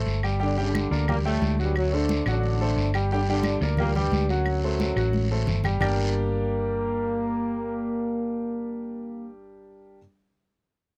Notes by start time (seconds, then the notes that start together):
Already playing: A3 A4 C5
0.06 G1, high conga, short guiro
0.23 G3 G4 G5, short guiro, claves
0.40 D3 G3 D4 G4 G5, high conga, long guiro
0.57 D3 G3 D4 G4 G5, high conga
0.75 high conga, short guiro, claves
0.91 D2 A#3 A#4 D5, high conga, short guiro
1.08 A#2 G3 A#3 G4 G5, high conga, low conga, long guiro, claves
1.25 A2 G3 A3 G4 G5, high conga
1.42 D2, high conga, short guiro
1.59 G2 F#3 G3 F#4 F#5, high conga, short guiro
1.76 F#2 F#3, high conga, long guiro, claves
1.93 D3 A3 D4 A4 C5, high conga
2.09 high conga, short guiro
2.26 A1 D3 F#3 D4 F#4 F#5, short guiro, claves
2.43 high conga, long guiro
2.60 A3 A4 C5, high conga
2.76 G1, high conga, short guiro
2.94 G3 G4 G5, short guiro, claves
3.11 D3 G3 D4 G4 G5, high conga, long guiro
3.27 D3 G3 D4 G4 G5, high conga
3.43 high conga, short guiro, claves
3.61 D2 A#3 A#4 D5, high conga, short guiro
3.77 A#2 G3 A#3 G4 G5, high conga, low conga, long guiro, claves
3.95 G2 G3 G4 G5, high conga, low conga
4.12 D2, high conga, short guiro
4.29 F#2 F#3 F#4 F#5, high conga, short guiro
4.46 high conga, long guiro, claves
4.63 A3 A4 C5, high conga
4.80 high conga, short guiro
4.96 A1 F#3 F#4 F#5, short guiro, claves
5.13 high conga, long guiro
5.31 A3 A4 C5
5.47 G1, low conga, short guiro
5.64 G3 G4 G5, low conga, short guiro, claves
5.80 G1 G3 A#3 D4 G4 A#4 D5 G5, low conga, long guiro, claves